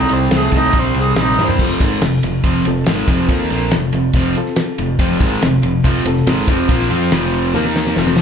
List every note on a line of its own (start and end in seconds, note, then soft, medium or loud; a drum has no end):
0.00 0.27 C3 loud
0.00 0.28 G3 loud
0.00 0.57 C4 medium
0.00 0.14 D#4 medium
0.00 0.57 E4 medium
0.00 0.58 A4 medium
0.09 0.29 C2 medium
0.09 0.32 C4 medium
0.09 ride medium
0.31 0.50 C2 medium
0.31 0.51 C3 medium
0.31 0.51 A3 loud
0.31 snare loud
0.31 ride medium
0.36 0.54 G#4 medium
0.52 0.71 C2 medium
0.52 0.72 C3 medium
0.52 0.73 A3 medium
0.52 kick medium
0.52 ride medium
0.57 0.81 D#4 loud
0.73 0.93 A#1 medium
0.73 1.13 C3 medium
0.73 1.13 G3 medium
0.73 kick loud
0.73 ride medium
0.79 0.97 C4 loud
0.94 1.14 C2 medium
0.94 ride medium
1.00 1.22 G#4 medium
1.16 1.35 A#1 medium
1.16 1.36 C3 medium
1.16 1.36 G3 medium
1.16 snare loud
1.16 ride medium
1.21 1.40 D#4 loud
1.38 1.57 G2 medium
1.38 1.58 C3 medium
1.38 1.58 G3 medium
1.38 1.55 C4 medium
1.38 1.56 E4 medium
1.38 1.57 A#4 medium
1.38 snare medium
1.44 1.62 C4 loud
1.48 floor tom medium
1.59 1.79 F1 loud
1.59 1.80 F2 medium
1.59 1.80 C3 loud
1.59 1.81 F3 loud
1.59 2.28 C4 medium
1.59 2.28 F4 medium
1.59 2.29 A4 medium
1.59 kick loud
1.59 crash loud
1.71 snare soft
1.80 2.00 G#1 medium
1.80 2.02 G#2 medium
1.80 2.02 D#3 loud
1.80 2.02 G#3 medium
1.80 kick loud
1.80 ride medium
2.01 2.21 F1 medium
2.01 2.20 F2 medium
2.01 2.19 C3 medium
2.01 snare loud
2.01 ride loud
2.23 2.43 F1 medium
2.23 2.41 F2 medium
2.23 2.41 C3 medium
2.23 ride medium
2.44 2.64 F1 loud
2.44 2.65 F2 medium
2.44 2.66 C3 medium
2.44 2.66 F3 loud
2.44 kick loud
2.44 ride medium
2.65 2.86 F1 medium
2.65 2.83 F2 medium
2.65 2.84 C3 medium
2.65 3.17 C4 medium
2.65 3.18 F4 medium
2.65 3.18 A4 medium
2.65 ride medium
2.86 3.07 G#1 medium
2.86 3.08 G#2 medium
2.86 3.08 D#3 loud
2.86 3.08 G#3 medium
2.86 snare loud
2.86 ride loud
3.08 3.28 F1 loud
3.08 3.29 F2 medium
3.08 3.29 C3 loud
3.08 3.30 F3 loud
3.08 kick loud
3.08 ride medium
3.27 3.49 D#2 medium
3.27 3.50 D#3 medium
3.27 3.50 A#3 loud
3.27 3.97 C4 medium
3.27 3.51 D#4 loud
3.27 3.97 F4 medium
3.27 3.98 A4 loud
3.27 kick loud
3.27 ride medium
3.40 snare soft
3.50 3.71 A#1 medium
3.50 3.72 A#2 medium
3.50 3.72 F3 loud
3.50 3.72 A#3 loud
3.50 ride medium
3.71 3.92 F1 medium
3.71 3.89 F2 medium
3.71 3.89 C3 medium
3.71 snare loud
3.71 ride medium
3.93 4.13 F1 medium
3.93 4.10 F2 medium
3.93 4.11 C3 medium
3.93 ride medium
4.13 4.34 F1 medium
4.13 4.35 F2 medium
4.13 4.35 C3 medium
4.13 4.35 F3 loud
4.13 kick loud
4.13 ride medium
4.35 4.87 C4 medium
4.35 4.87 F4 medium
4.35 4.88 A4 loud
4.35 ride medium
4.46 snare soft
4.56 snare loud
4.56 ride medium
4.78 4.98 F1 medium
4.78 4.96 F2 medium
4.78 4.96 C3 medium
4.78 ride medium
4.99 5.19 F1 medium
4.99 5.20 F2 loud
4.99 5.20 C3 loud
4.99 5.21 F3 loud
4.99 5.68 C4 medium
4.99 5.68 F4 medium
4.99 5.68 C5 loud
4.99 kick loud
4.99 ride loud
5.11 snare soft
5.20 5.40 G#1 loud
5.20 5.41 G#2 loud
5.20 5.42 D#3 medium
5.20 5.42 G#3 loud
5.20 kick loud
5.20 ride medium
5.42 5.62 F1 medium
5.42 5.59 F2 medium
5.42 5.59 C3 medium
5.42 snare loud
5.42 ride loud
5.62 5.83 F1 medium
5.62 5.80 F2 medium
5.62 5.80 C3 medium
5.62 ride medium
5.84 6.04 F1 loud
5.84 6.05 F2 loud
5.84 6.05 C3 medium
5.84 6.06 F3 loud
5.84 kick loud
5.84 ride loud
6.05 6.25 F1 medium
6.05 6.23 F2 medium
6.05 6.23 C3 medium
6.05 6.57 C4 medium
6.05 6.57 F4 medium
6.05 6.58 A4 loud
6.05 ride medium
6.16 snare soft
6.26 6.47 G#1 medium
6.26 6.48 G#2 medium
6.26 6.48 D#3 loud
6.26 6.48 G#3 medium
6.26 snare loud
6.26 ride medium
6.48 6.68 F1 loud
6.48 6.69 F2 medium
6.48 6.69 C3 medium
6.48 6.69 F3 loud
6.48 kick loud
6.48 ride medium
6.69 6.89 A#1 medium
6.69 6.90 A#2 loud
6.69 6.89 F3 loud
6.69 6.91 A#3 loud
6.69 7.37 C4 medium
6.69 7.37 F4 medium
6.69 7.38 C5 medium
6.69 kick loud
6.69 ride loud
6.81 snare soft
6.90 7.11 F2 loud
6.90 7.11 F3 medium
6.90 7.11 C4 medium
6.90 7.12 F4 loud
6.90 ride medium
7.12 7.52 F1 medium
7.12 7.54 F2 medium
7.12 7.54 C3 medium
7.12 7.54 F3 loud
7.12 snare loud
7.12 ride medium
7.34 ride medium
7.54 7.93 D#2 medium
7.54 7.96 D#3 medium
7.54 7.71 A#3 loud
7.54 7.96 A#3 loud
7.54 7.96 D#4 loud
7.54 7.72 D#4 medium
7.54 7.72 A#4 loud
7.54 snare medium
7.65 snare medium
7.76 7.97 A#3 medium
7.76 7.97 D#4 medium
7.76 7.98 A#4 loud
7.76 snare medium
7.87 snare medium
7.96 8.22 F1 medium
7.96 8.22 F2 medium
7.96 8.22 C3 medium
7.96 8.22 F3 medium
7.96 8.22 C4 medium
7.96 8.22 F4 medium
7.96 8.22 A4 loud
7.96 snare medium
8.07 snare medium
8.17 snare loud